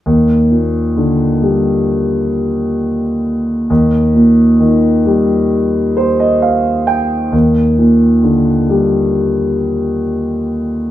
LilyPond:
<<
  \new Staff \with { instrumentName = "Grand piano" } { \time 4/4 \key ees \major \tempo 4 = 66 r1 | r2 r8 c''16 ees''16 f''8 g''8 | r1 | }
  \new Staff \with { instrumentName = "Grand piano" } { \clef bass \time 4/4 \key ees \major ees,8 bes,8 d8 g2 r8 | ees,8 bes,8 ees8 g2 r8 | ees,8 bes,8 d8 g2 r8 | }
>>